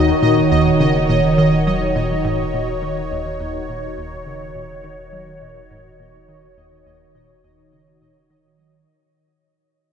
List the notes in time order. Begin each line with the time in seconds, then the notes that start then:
Already playing: D#1 D#2 D#3 D#4 F#4 C#5 D#5
0.22 A#2
0.51 D#2
0.80 C#3
1.09 A#2
1.38 D#3
1.67 F#3
1.95 A#2
2.24 G#2
2.53 A#2
2.82 D#3
3.11 D#2
3.40 D#2
3.69 A#2
3.97 D#2
4.26 C#3
4.55 A#2
4.84 D#3
5.12 F#3
5.42 A#2
5.70 G#2
6.00 A#2
6.28 D#3
6.57 D#2
6.86 D#2
7.15 A#2
7.44 D#2
7.72 C#3
8.01 A#2
8.30 D#3
8.59 F#3